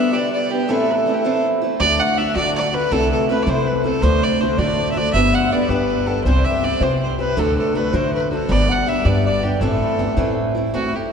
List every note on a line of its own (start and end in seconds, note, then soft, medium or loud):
0.00 0.13 G3 medium
0.00 0.13 B3 medium
0.00 0.12 D4 medium
0.00 0.11 G4 medium
0.00 0.14 E5 medium
0.00 0.15 E5 medium
0.12 0.51 G3 medium
0.12 0.51 B3 medium
0.12 0.51 D4 medium
0.12 0.49 G4 medium
0.12 0.32 D5 medium
0.32 0.52 D5 medium
0.32 0.53 D5 medium
0.50 0.69 B3 soft
0.50 0.69 D4 soft
0.50 0.68 G4 soft
0.50 0.69 G4 medium
0.50 0.71 G4 medium
0.68 1.06 A2 medium
0.68 1.05 E3 medium
0.68 1.08 A3 medium
0.68 1.06 C4 medium
0.68 1.07 E4 medium
0.68 0.92 A4 medium
0.68 0.93 A4 medium
0.91 0.96 B4 medium
0.95 1.15 A4 medium
0.95 1.17 A4 medium
1.06 1.24 E3 medium
1.06 1.24 A3 medium
1.06 1.24 C4 medium
1.06 1.23 E4 medium
1.14 1.20 G4 medium
1.18 1.44 A4 medium
1.18 1.42 A4 soft
1.25 1.63 A2 soft
1.25 1.63 E3 medium
1.25 1.63 A3 medium
1.25 1.63 C4 medium
1.25 1.60 E4 medium
1.62 1.80 A3 soft
1.62 1.81 C4 soft
1.62 1.80 E4 medium
1.80 2.18 D2 medium
1.80 1.97 D2 medium
1.80 2.18 A2 medium
1.80 2.16 D3 medium
1.80 2.18 A3 medium
1.80 2.18 D4 medium
1.80 2.19 F#4 medium
1.80 2.01 D5 loud
1.80 2.02 D5 medium
2.00 2.19 F#5 loud
2.00 2.20 F#5 loud
2.17 2.36 D3 medium
2.17 2.35 A3 medium
2.17 2.35 D4 medium
2.17 2.34 F#4 medium
2.17 2.35 E5 loud
2.17 2.37 E5 medium
2.35 2.74 D2 medium
2.35 2.74 A2 medium
2.35 2.84 D3 medium
2.35 2.74 D3 medium
2.35 2.74 A3 medium
2.35 2.73 D4 medium
2.35 2.71 F#4 medium
2.35 2.55 D5 medium
2.35 2.54 D5 loud
2.55 2.76 D5 medium
2.55 2.73 D5 medium
2.73 2.92 D3 soft
2.73 2.92 A3 soft
2.73 2.92 D4 soft
2.73 2.91 F#4 soft
2.73 2.93 B4 loud
2.73 2.94 B4 medium
2.91 3.09 C2 medium
2.91 3.29 C3 medium
2.91 3.28 E3 medium
2.91 3.30 A3 medium
2.91 3.29 C4 medium
2.91 3.30 E4 medium
2.91 3.11 A4 loud
2.91 3.12 A4 medium
3.12 3.28 A4 medium
3.12 3.32 A4 medium
3.29 3.47 E3 medium
3.29 3.46 A3 medium
3.29 3.47 C4 medium
3.29 3.45 E4 medium
3.29 3.48 B4 medium
3.29 3.44 B4 medium
3.43 3.83 E4 medium
3.43 3.51 D5 medium
3.47 3.96 C3 medium
3.47 3.86 C3 medium
3.47 3.85 E3 medium
3.47 3.84 A3 medium
3.47 3.85 C4 medium
3.47 3.70 C5 medium
3.47 3.68 C5 medium
3.67 3.84 B4 medium
3.67 3.87 B4 medium
3.84 4.02 A3 soft
3.84 4.03 C4 soft
3.84 4.02 E4 medium
3.84 4.04 A4 medium
3.84 4.05 A4 medium
4.02 4.40 D2 medium
4.02 4.20 D2 medium
4.02 4.41 A2 medium
4.02 4.40 D3 medium
4.02 4.41 A3 medium
4.02 4.41 D4 medium
4.02 4.41 F#4 medium
4.02 4.25 C5 loud
4.02 4.40 C5 medium
4.23 4.42 D5 loud
4.40 4.58 D3 medium
4.40 4.58 A3 medium
4.40 4.57 D4 medium
4.40 4.57 F#4 medium
4.40 4.59 C5 medium
4.40 4.60 C5 medium
4.58 4.97 D2 medium
4.58 4.97 A2 medium
4.58 5.07 D3 medium
4.58 4.97 D3 medium
4.58 4.96 A3 medium
4.58 4.96 D4 medium
4.58 4.95 F#4 medium
4.58 4.96 D5 medium
4.58 4.91 D5 medium
4.92 4.99 E5 medium
4.96 5.14 D3 soft
4.96 5.15 A3 medium
4.96 5.15 D4 soft
4.96 5.14 F#4 soft
4.96 5.15 D5 medium
4.96 5.12 D5 loud
5.13 5.31 G1 medium
5.13 5.51 G3 medium
5.13 5.52 B3 medium
5.13 5.53 D4 medium
5.13 5.53 G4 medium
5.13 5.36 E5 loud
5.13 5.35 E5 medium
5.34 5.53 F#5 medium
5.34 5.54 F#5 medium
5.52 5.70 G3 medium
5.52 5.70 B3 soft
5.52 5.70 D4 medium
5.52 5.69 G4 medium
5.52 5.71 D5 medium
5.69 6.18 G2 medium
5.69 6.09 G3 medium
5.69 6.08 B3 medium
5.69 6.07 D4 medium
5.69 6.05 G4 medium
5.69 6.09 B4 medium
5.69 6.08 B4 medium
6.07 6.26 B3 soft
6.07 6.26 D4 soft
6.07 6.25 G4 medium
6.07 6.23 A4 medium
6.07 6.27 A4 medium
6.24 6.42 C2 medium
6.24 6.63 C3 medium
6.24 6.61 E3 medium
6.24 6.62 G3 medium
6.24 6.63 C4 medium
6.24 6.64 G4 medium
6.24 6.46 C5 loud
6.24 6.40 C5 medium
6.38 6.47 D5 medium
6.45 6.66 E5 medium
6.45 6.83 E5 medium
6.62 6.81 E3 medium
6.62 6.81 G3 soft
6.62 6.81 C4 medium
6.62 6.80 G4 medium
6.62 6.84 D5 medium
6.81 7.30 C3 medium
6.81 7.20 C3 medium
6.81 7.20 E3 medium
6.81 7.19 G3 medium
6.81 7.19 C4 medium
6.81 7.18 G4 medium
6.81 7.00 C5 medium
6.81 7.02 C5 medium
7.01 7.20 C5 medium
7.01 7.19 C5 medium
7.18 7.37 G3 soft
7.18 7.38 C4 soft
7.18 7.37 G4 soft
7.18 7.38 B4 medium
7.18 7.41 B4 medium
7.37 7.75 D2 medium
7.37 7.54 D2 medium
7.37 7.75 A2 medium
7.37 7.74 D3 medium
7.37 7.74 A3 medium
7.37 7.75 D4 medium
7.37 7.76 F#4 medium
7.37 7.56 A4 medium
7.37 7.58 A4 loud
7.56 7.76 A4 medium
7.56 7.78 A4 medium
7.74 7.93 D3 medium
7.74 7.93 A3 medium
7.74 7.92 D4 medium
7.74 7.92 F#4 medium
7.74 7.93 B4 medium
7.74 7.97 B4 medium
7.92 8.32 D2 soft
7.92 8.32 A2 medium
7.92 8.42 D3 medium
7.92 8.32 D3 medium
7.92 8.31 A3 medium
7.92 8.31 D4 medium
7.92 8.30 F#4 medium
7.92 8.13 C5 medium
7.92 8.14 C5 medium
8.12 8.30 B4 medium
8.12 8.31 B4 medium
8.31 8.48 D3 soft
8.31 8.49 A3 soft
8.31 8.49 D4 soft
8.31 8.49 F#4 medium
8.31 8.53 A4 medium
8.49 8.66 G1 loud
8.49 8.85 G3 medium
8.49 8.86 B3 medium
8.49 8.87 D4 medium
8.49 8.88 G4 medium
8.49 8.71 D5 medium
8.49 8.73 D5 loud
8.69 8.89 F#5 medium
8.69 8.90 F#5 medium
8.86 9.05 G3 medium
8.86 9.05 B3 medium
8.86 9.04 D4 medium
8.86 9.04 G4 medium
8.86 9.07 E5 medium
9.05 9.54 G2 medium
9.05 9.44 G3 medium
9.05 9.44 B3 medium
9.05 9.43 D4 medium
9.05 9.41 G4 medium
9.05 9.25 D5 medium
9.25 9.63 D5 medium
9.25 9.44 D5 medium
9.43 9.62 B3 soft
9.43 9.62 D4 medium
9.43 9.61 G4 medium
9.43 9.60 G4 medium
9.61 9.78 A1 medium
9.61 9.99 A2 medium
9.61 9.99 E3 medium
9.61 10.00 A3 medium
9.61 10.00 C4 medium
9.61 10.01 E4 medium
9.61 10.33 A4 medium
9.61 10.37 A4 medium
9.99 10.17 E3 medium
9.99 10.16 A3 medium
9.99 10.16 C4 medium
9.99 10.15 E4 medium
10.17 10.66 A2 medium
10.17 10.56 A2 medium
10.17 10.73 E3 medium
10.17 10.55 A3 medium
10.17 10.57 C4 medium
10.17 10.54 E4 medium
10.55 10.73 A3 soft
10.55 10.73 C4 soft
10.55 10.73 E4 medium
10.74 10.93 A2 medium
10.74 10.93 E3 medium
10.74 10.94 A3 medium
10.74 10.93 C4 medium
10.74 10.91 E4 medium
10.74 10.97 F#4 medium
10.93 11.11 A3 soft
10.93 11.12 C4 soft
10.93 11.11 E4 soft
10.93 11.12 G4 medium